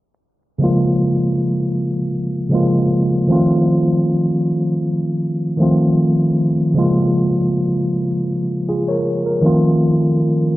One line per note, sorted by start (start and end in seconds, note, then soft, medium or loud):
0.58 1.93 C#3 medium
0.58 1.93 F3 medium
0.58 1.94 G#3 medium
0.58 1.95 A#3 medium
0.64 1.95 F4 medium
2.49 3.28 C#3 medium
2.49 3.27 F3 medium
2.49 3.29 G#3 medium
2.49 3.30 A#3 medium
2.54 3.30 F4 medium
3.27 4.62 D#3 medium
3.27 4.62 F3 medium
3.27 4.63 A3 medium
3.27 4.63 C4 medium
3.32 4.64 F4 medium
5.57 6.59 D#3 medium
5.57 6.60 F3 medium
5.57 6.60 A3 medium
5.57 6.61 C4 medium
5.62 6.62 F4 medium
6.74 8.08 C#3 medium
6.74 8.09 F3 medium
6.74 8.09 G#3 medium
6.74 8.10 A#3 medium
6.79 8.11 F4 medium
8.69 8.89 F4 medium
8.69 8.88 G#4 medium
8.88 9.25 A#4 medium
8.88 9.25 C#5 medium
9.26 9.63 A#4 medium
9.41 10.57 D#3 medium
9.41 10.57 F3 medium
9.41 10.57 A3 medium
9.45 10.57 C4 medium
9.45 10.57 F4 medium